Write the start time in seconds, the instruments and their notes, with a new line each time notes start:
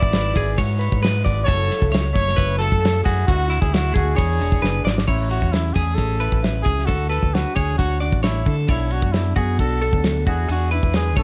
Already playing: clean electric guitar G#3 E4 F#4 B4, trumpet D5
0.02 fingered electric bass G#1, kick
0.13 clean electric guitar B4, snare, ride
0.34 fingered electric bass G#1, clean electric guitar E4 G#4, kick, ride
0.57 fingered electric bass G#2, clean electric guitar F#4 C#5, kick, ride
0.79 clean electric guitar B4, ride
0.92 fingered electric bass G#2, kick
1.02 clean electric guitar G#3 B4, snare, ride
1.24 fingered electric bass G#1, clean electric guitar F#4 D5, kick, ride
1.45 fingered electric bass F#1, clean electric guitar F#3 E4 F#4 A4, trumpet C#5, kick, ride
1.69 clean electric guitar E4, snare, ride
1.82 fingered electric bass C#2, kick
1.91 clean electric guitar E4 C#5, snare, ride
2.01 clean electric guitar F#4
2.13 fingered electric bass F#1, clean electric guitar A3, trumpet C#5, kick, snare, ride
2.28 snare
2.36 fingered electric bass F#1, clean electric guitar E4 B4, kick, ride
2.59 clean electric guitar F#4 A4, trumpet A4, ride
2.72 fingered electric bass F#2, kick
2.80 clean electric guitar C#3
2.85 snare, ride
3.04 fingered electric bass F#2, clean electric guitar E4 F#4, trumpet G#4, kick, ride
3.27 fingered electric bass D2, clean electric guitar D3 E4, trumpet F#4, kick, ride
3.48 clean electric guitar E4, ride
3.62 fingered electric bass D2, trumpet G#4, kick
3.72 clean electric guitar E4, trumpet F#4, snare, ride
3.92 fingered electric bass D2, clean electric guitar A3 G#4, kick, ride
3.96 trumpet F#4
4.15 fingered electric bass E2, clean electric guitar E3 D4 C#5, trumpet G#4, kick, ride
4.40 fingered electric bass E1, clean electric guitar D4, ride
4.52 kick
4.62 fingered electric bass F#1, clean electric guitar D4 B4, snare
4.84 fingered electric bass G#1, clean electric guitar G#3 D5, snare
4.98 snare
5.06 fingered electric bass A1, clean electric guitar A2 C#4 C#5, trumpet E4, kick, crash
5.29 clean electric guitar E4, trumpet F#4, ride
5.42 fingered electric bass E2, kick
5.52 clean electric guitar C#4, trumpet E4, snare, ride
5.74 fingered electric bass E2, clean electric guitar A3 G#4, trumpet G#4, kick, snare, ride
5.95 fingered electric bass A1, clean electric guitar C#4, trumpet A4, kick, ride
6.20 clean electric guitar E3 E4 B4, ride
6.32 fingered electric bass A1, kick
6.42 clean electric guitar E4, snare, ride
6.63 fingered electric bass C#2, clean electric guitar C#4 G#4, trumpet G#4, kick, ride
6.79 snare
6.86 fingered electric bass D2, clean electric guitar D3 D4 A4, trumpet F#4, kick, ride
7.09 clean electric guitar F#4 B4, trumpet A4, ride
7.23 fingered electric bass D2, kick
7.34 clean electric guitar D4, trumpet F#4, snare, ride
7.55 fingered electric bass D2, clean electric guitar D4 C#5, trumpet G#4, kick, ride
7.78 fingered electric bass D2, clean electric guitar D4, trumpet F#4, kick, ride
8.00 clean electric guitar A2 D4 D5, trumpet F#4, ride
8.12 fingered electric bass A1, kick
8.23 clean electric guitar D4 C#5, trumpet E4, snare, ride
8.46 fingered electric bass D3, clean electric guitar D4 A4, kick, ride
8.67 fingered electric bass B1, clean electric guitar B2 D4 C#5, trumpet E4, kick, ride
8.91 clean electric guitar D4, trumpet F#4, ride
9.02 fingered electric bass F#2, kick
9.13 clean electric guitar D4, trumpet E4, snare, ride
9.36 fingered electric bass F#2, clean electric guitar B3 F#4, trumpet G#4, kick, ride
9.59 fingered electric bass B1, clean electric guitar D4, trumpet A4, kick, ride
9.82 clean electric guitar F#3 F#4 A4, ride
9.93 fingered electric bass D2, kick
10.04 clean electric guitar F#4, snare, ride
10.26 fingered electric bass E2, clean electric guitar E3 D4 F#4, trumpet G#4, kick, ride
10.48 fingered electric bass E2, clean electric guitar D4 G#4, trumpet F#4, ride
10.71 clean electric guitar D4 B4, trumpet E4, ride
10.83 fingered electric bass E2, kick
10.93 clean electric guitar G#3, trumpet G#4, snare, ride
11.16 fingered electric bass B1, clean electric guitar B2 D4 F#4 C#5, trumpet A4, kick, ride